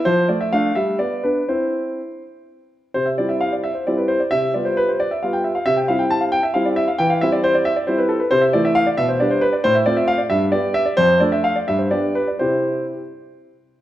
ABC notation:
X:1
M:6/8
L:1/16
Q:3/8=88
K:C
V:1 name="Grand piano"
c2 d e f2 e2 d2 B2 | c6 z6 | c e d e f d e c d B c d | e2 d c B c d e f g e f |
e g f g a f g e f d e f | g f e d c d e d c B A B | c e d e f d e c d c B d | c e d e f d e2 d2 e d |
c2 d e f d e c d2 B d | c6 z6 |]
V:2 name="Grand piano"
F,2 A,2 [A,D]2 G,2 B,2 [B,D]2 | [CE]6 z6 | C,2 [G,CE]6 [G,CE]4 | C,2 [G,B,F]6 [G,B,F]4 |
C,2 [G,CE]6 [G,CE]4 | E,2 [G,CE]6 [G,CE]4 | C,2 [E,A,E]4 B,,2 [G,B,D]4 | A,,2 [A,CF]4 G,,2 [B,G]4 |
F,,2 [A,DA]4 G,,2 [B,DG]4 | [C,EG]6 z6 |]